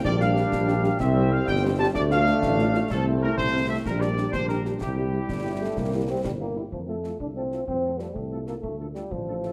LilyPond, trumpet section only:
\new Staff \with { instrumentName = "Trumpet section" } { \time 6/8 \key f \major \tempo 4. = 126 d''8 f''2~ f''8 | e''4 f''8 g''4 a''8 | d''8 f''2~ f''8 | a'4 bes'8 c''4 e''8 |
bes'8 d''4 c''8 bes'4 | g'2.~ | g'4. r4. | r8 a'8 a'8 r8 a'8 a'8 |
r8 a'8 a'8 r8 a'8 a'8 | r8 a'8 a'8 r8 a'8 a'8 | }